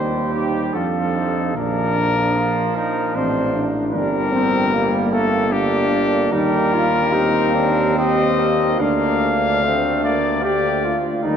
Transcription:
Already playing: D#2 G3 D#4 G4 C5
0.33 G4
0.73 F2 F3 D4 F4 A4
1.16 D#4
1.56 A#1 F3 D4 A#4
1.98 F3
2.38 F4
2.76 D#4 A#4
3.15 A1 C4 D4 C5
3.55 D4
3.94 G1 G3 D4 A#4
4.33 C4
4.73 G3 A#3
5.13 A3 A4
5.52 A#3 D4 G4
6.32 D#2 G3 D#4 G4 A#4
6.73 F4
7.13 C4 D#4 G4
7.54 D4
7.98 C4 G4 D#5
8.39 A#3
8.80 D2 A#3 D4 F5
9.63 A3 C4 D4
10.04 A#3 D5
10.43 G4 D5
10.84 F4
11.23 D#2 G3 D#4 A#4

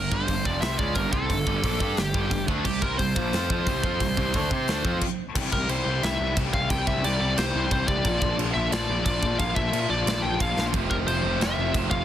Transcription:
Already playing: G1 A#4
0.11 G1 G2 D3 G3 C5, kick
0.28 G1 G2 D3, kick, open hi-hat
0.45 F1 F2 C3 F3 D5, kick
0.61 C2 C3 G3 C4 E5, snare, open hi-hat
0.79 C#2 C#3 G#3 C#4 D5, kick
0.95 G1 G2 D3 G3 A#4, kick, open hi-hat
1.12 C2 C3 G3 C4 A4, kick
1.29 G1 G2 D3, kick, open hi-hat
1.46 G1 G2 D3 G3, kick
1.63 A#1 A#2 F3 A#3, kick, open hi-hat
1.80 G2 G3 D4 G4, kick
1.97 G1 G2 D3, snare, open hi-hat
2.02 G4
2.14 G1 G2 D3 G3, kick
2.31 G1 G2 D3, kick, open hi-hat
2.48 D2 D3 A3 D4, kick
2.65 C2 C3 G3 G4, kick, crash
2.82 C2 C3 G3 C4 A#4, kick
2.98 C2 C3 G3 C5, kick, open hi-hat
3.16 A#1 A#2 F3 A#3, kick
3.33 F2 F3 C4 F4, snare, open hi-hat
3.50 F2 F3 C4 F4, kick
3.67 C2 C3 G3 C4, kick, open hi-hat
3.83 F2 F3 C4 F4, kick
4.00 C2 C3 G3, kick, open hi-hat
4.17 C2 C3 G3 C4, kick
4.34 D2 D3 A3 D4, kick, open hi-hat
4.51 C3 C4 G4 C5, kick
4.68 D2 D3 A3 D4, snare, open hi-hat
4.85 F2 F3 C4 F4, kick
5.02 kick, crash
5.35 C2 C3 G3, kick, crash
5.43 C3 G3
5.51 C2 C3 G3 A#4, kick
5.58 C3 G3
5.67 C2 C3 G3 C5, crash
5.74 C3 G3
5.83 C2 C3 G3
5.90 C3 G3
5.99 C3 G3
6.03 C2 C3 G3 E5, snare, crash
6.14 C3 G3
6.20 C2 C3 G3
6.30 C3 G3
6.37 C2 C3 G3, kick, crash
6.45 C3 G3
6.53 C2 C3 G3 F5, kick
6.61 C3 G3
6.70 C2 C3 G3 G5, kick, crash
6.78 C3 G3
6.86 C2 C3 G3 E5, kick
6.92 C3 G3
7.00 C2 C3 G3
7.04 C3 D5, crash
7.10 G3
7.15 C3 G3
7.20 C2 C3 D5
7.26 C3 G3
7.34 C2 G3 C5, crash
7.39 C3 G3, snare
7.45 C3
7.50 C3 G3
7.54 C2 G3
7.60 C3
7.66 C3 G3
7.71 C2 G3 C5, kick, crash
7.75 C3
7.81 C3 G3
7.88 C2 C3 G3 D5, kick
7.96 C3 G3
8.05 A#1 A#2 F3, kick, crash
8.12 A#2 F3
8.21 A#1 A#2 F3, kick
8.29 A#2 F3
8.36 A#1 A#2 F3, crash
8.44 A#2 F3
8.52 A#1 A#2 F3 E5
8.60 A#2 F3
8.68 A#2 F3
8.72 A#1 A#2 D5, snare, crash
8.77 F3
8.83 A#2 F3
8.89 A#1 A#2 F3
8.99 A#2 F3
9.05 A#1 A#2 F3 D5, kick, crash
9.15 A#2 F3
9.21 A#1 A#2 F3, kick
9.30 A#2 F3
9.39 A#1 A#2 F3 F5, kick, crash
9.48 A#2 F3
9.55 A#1 A#2 F3 E5, kick
9.62 A#2 F3
9.71 A#2 F3, crash
9.79 A#2 F3
9.86 A#1 A#2 F3
9.90 D5
9.94 A#2 F3
10.03 A#1 A#2 F3
10.07 A#2, snare, crash
10.11 F3
10.18 A#2 F3
10.22 A#1 A#2 G5
10.27 F3
10.34 A#2 F3
10.40 A#1 A#2 F3 F5, kick, crash
10.49 A#2 F3
10.57 A#1 A#2 F3, snare
10.65 A#2 F3
10.74 F1 F2 C3 F3, kick, crash
10.82 F2 C3
10.88 F1 F2 C3 A#4, kick
10.97 F2 C3
11.05 F1 F2 C3 C5, crash
11.13 F2 C3
11.20 F1 F2 C3 F3
11.29 F2 C3
11.36 F1 F2 C3
11.41 F2 C3 E5, snare, crash
11.52 F2 C3
11.57 F1 F2 C3
11.67 F2 C3
11.74 F1 F2 C3, kick, crash
11.83 F2 C3
11.90 F1 F2 C3 F5, kick
11.99 F2 C3

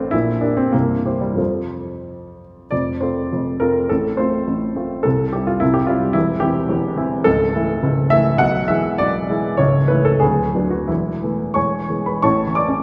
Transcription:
Already playing: A1 A2 C4 D4 F4 A4 C5 F5
0.11 A#1 A#2 E4
0.41 D4 G4 A#4 D5
0.57 C4
0.72 C1 C2 A#3
1.05 E4 G4 C5
1.21 G3
1.35 F2 F3 F4 A4 C5
2.71 F1 F2 D5
3.01 C4 F4 A4 C5
3.33 F1 F2
3.60 C4 F4 A4 A#4
3.89 A1 A2 A4
4.17 A3 C4 F4 C5
4.47 A1 A2
4.76 A3 C4 F4
5.03 C2 C3 A4
5.33 G3 C4 E4 G4
5.47 F4
5.60 C2 C3 E4
5.74 G4
5.87 G3 C4 E4 F4
6.13 E1 E2 E4
6.40 E3 C4 E4 G4
6.69 E1 E2
6.97 E3 C4 E4
7.24 C#1 C#2 A4
7.55 E3 A3 E4
7.83 C#1 C#2
8.10 E3 A3 E4 E5
8.37 B1 B2 F#5
8.68 E3 G#3 E4 E5
8.98 B1 B2 D5
9.29 E3 G#3 E4
9.57 C#1 C#2 C#5
9.88 E3 A3 E4 B4
10.05 A4
10.20 D1 D2 G#4
10.55 F#3 B3 D4
10.70 F#4
10.88 E1 E2 E4
11.23 E3 A3 B3
11.54 E1 E2 C#5 G#5 C#6
11.89 E3 G#3 B3
12.06 B4 B5
12.22 A1 A2 C#5 A5 C#6
12.47 E3
12.55 D5 D6
12.69 C#4

